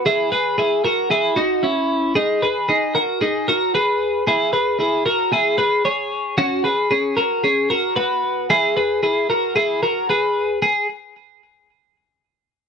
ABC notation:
X:1
M:4/4
L:1/8
Q:1/4=114
K:Elyd
V:1 name="Clean electric guitar"
[EG] [GB] [EG] [FA] [EG] [DF] [CE]2 | [DG] [GB] [DG] [FA] [DG] [FA] [GB]2 | [EG] [GB] [EG] [FA] [EG] [GB] [Gc]2 | [CF] [GB] [CG] [FA] [CG] [FA] [FB]2 |
[EG] [GB] [EG] [FA] [EG] [FA] [GB]2 | G z6 z |]